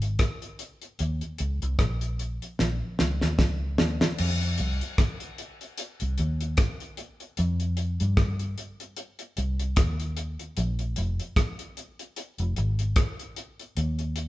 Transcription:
Already playing: fingered electric bass G#1
0.02 closed hi-hat
0.19 kick, cross-stick, closed hi-hat
0.42 closed hi-hat
0.59 closed hi-hat
0.82 closed hi-hat
0.99 fingered electric bass D#2, closed hi-hat
1.21 closed hi-hat
1.38 fingered electric bass C#2, closed hi-hat
1.62 fingered electric bass C2, closed hi-hat
1.79 fingered electric bass A#1, kick, cross-stick, closed hi-hat
2.01 closed hi-hat
2.19 closed hi-hat
2.42 closed hi-hat
2.59 fingered electric bass A#1, snare
2.99 fingered electric bass C#2, snare
3.21 fingered electric bass D#2, snare
3.39 fingered electric bass C#2, kick, snare
3.78 fingered electric bass D#2, snare
4.01 snare
4.18 fingered electric bass F2, crash
4.41 closed hi-hat
4.58 fingered electric bass C2, closed hi-hat
4.81 closed hi-hat
4.98 kick, cross-stick, closed hi-hat
5.20 closed hi-hat
5.38 closed hi-hat
5.61 closed hi-hat
5.78 closed hi-hat
6.00 fingered electric bass C2, closed hi-hat
6.18 fingered electric bass D#2, closed hi-hat
6.41 closed hi-hat
6.57 kick, cross-stick, closed hi-hat
6.80 closed hi-hat
6.97 closed hi-hat
7.20 closed hi-hat
7.37 fingered electric bass F2, closed hi-hat
7.60 closed hi-hat
7.77 closed hi-hat
8.00 fingered electric bass G2, closed hi-hat
8.17 kick, cross-stick, closed hi-hat
8.39 closed hi-hat
8.58 closed hi-hat
8.80 closed hi-hat
8.97 closed hi-hat
9.19 closed hi-hat
9.37 fingered electric bass C2, closed hi-hat
9.59 closed hi-hat
9.76 fingered electric bass D#2, kick, cross-stick, closed hi-hat
10.00 closed hi-hat
10.17 closed hi-hat
10.39 closed hi-hat
10.57 fingered electric bass A#1, closed hi-hat
10.79 closed hi-hat
10.96 fingered electric bass F1, closed hi-hat
11.20 closed hi-hat
11.36 kick, cross-stick, closed hi-hat
11.59 closed hi-hat
11.77 closed hi-hat
11.99 closed hi-hat
12.16 closed hi-hat
12.38 fingered electric bass F1, closed hi-hat
12.56 fingered electric bass G#1, closed hi-hat
12.79 closed hi-hat
12.96 kick, cross-stick, closed hi-hat
13.19 closed hi-hat
13.36 closed hi-hat
13.60 closed hi-hat
13.77 fingered electric bass D#2, closed hi-hat
13.99 closed hi-hat
14.16 closed hi-hat

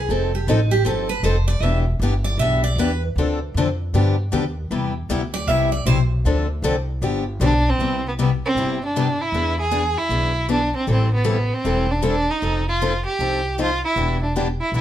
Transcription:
Already playing: steel-string acoustic guitar G#4
0.09 upright bass F1, steel-string acoustic guitar F3 C4 D#4 A4
0.35 steel-string acoustic guitar G4
0.47 upright bass A1, steel-string acoustic guitar F3 C4 D#4 A4
0.71 steel-string acoustic guitar G4
0.85 upright bass G1, steel-string acoustic guitar F3 C4 D#4 A4
1.09 steel-string acoustic guitar B4
1.23 upright bass F1, steel-string acoustic guitar F3 C4 D#4 A4 C5
1.48 steel-string acoustic guitar D5
1.60 upright bass E1, steel-string acoustic guitar E3 B3 D4 G4 E5
1.99 upright bass G1, steel-string acoustic guitar E3 B3 D4 G4
2.24 steel-string acoustic guitar D5
2.37 upright bass B1, steel-string acoustic guitar E3 B3 E5
2.42 steel-string acoustic guitar D4 G4
2.64 steel-string acoustic guitar D5
2.76 upright bass E2, steel-string acoustic guitar E3 B3 D4 B4
2.80 steel-string acoustic guitar G4
3.16 upright bass D2, steel-string acoustic guitar D3 F3 C4 D4 A4
3.54 upright bass F2, steel-string acoustic guitar D3 F3 C4 D4 A4
3.94 upright bass G2, steel-string acoustic guitar D3 F3 B3 D4 G4
4.32 upright bass D#2, steel-string acoustic guitar D3 F3 B3 D4 G4
4.71 upright bass E2, steel-string acoustic guitar C3 G3 B3 E4 G4
5.09 upright bass D2, steel-string acoustic guitar C3 G3 B3 E4 G4
5.34 steel-string acoustic guitar D5
5.47 upright bass C2, steel-string acoustic guitar C3 G3 B3 E4 G4 E5
5.72 steel-string acoustic guitar D5
5.86 upright bass B1, steel-string acoustic guitar C3 G3 B3 E4 G4 C5
6.25 upright bass D2, steel-string acoustic guitar D3 F3 C4 D4 A4
6.62 upright bass C2, steel-string acoustic guitar D3 F3 C4 D4 A4
7.02 upright bass G1, steel-string acoustic guitar D3 F3 B3 D4 G4
7.40 upright bass B1, steel-string acoustic guitar D3 F3 B3 D4 G4
7.44 violin D4
7.69 violin C4
7.78 upright bass C2, steel-string acoustic guitar C3 G3 B3 E4 G4
8.08 violin B3
8.19 steel-string acoustic guitar C3 G3 B3 E4 G4, violin B3
8.46 violin C4
8.55 upright bass G1, steel-string acoustic guitar C3 G3 B3 E4 G4
8.85 violin D4
8.96 steel-string acoustic guitar C3 G3 B3 E4 G4
9.22 violin E4
9.32 upright bass E2, steel-string acoustic guitar E3 B3 D4 G#4
9.60 violin G#4
9.71 steel-string acoustic guitar E3 B3 D4 G#4
9.97 violin E4
10.09 upright bass B1, steel-string acoustic guitar E3 B3 D4 G#4
10.49 steel-string acoustic guitar E3 B3 D4 G#4, violin D4
10.77 violin C4
10.87 upright bass A1, steel-string acoustic guitar E3 G3 C4 E4 A4
10.92 violin C4
11.14 violin B3
11.24 steel-string acoustic guitar E3 G3 C4 E4 A4
11.30 violin B3
11.54 violin C4
11.65 upright bass E1, steel-string acoustic guitar E3 G3 C4 E4 A4
11.91 violin D4
12.02 steel-string acoustic guitar E3 G3 C4 E4 A4
12.08 violin D4
12.31 violin D#4
12.42 upright bass F1, steel-string acoustic guitar F3 C4 D#4 A4
12.68 violin F4
12.82 steel-string acoustic guitar F3 C4 D#4 A4
13.06 violin G4
13.19 upright bass C2, steel-string acoustic guitar F3 C4 D#4 A4
13.58 steel-string acoustic guitar F3 C4 D#4 A4, violin F4
13.84 violin E4
13.96 upright bass E1, steel-string acoustic guitar E3 B3 D4 G4
14.23 violin D4
14.36 steel-string acoustic guitar E3 B3 D4 G4, violin D4
14.60 violin E4
14.72 upright bass B1, steel-string acoustic guitar E3 B3 D4 G4
14.76 violin E4

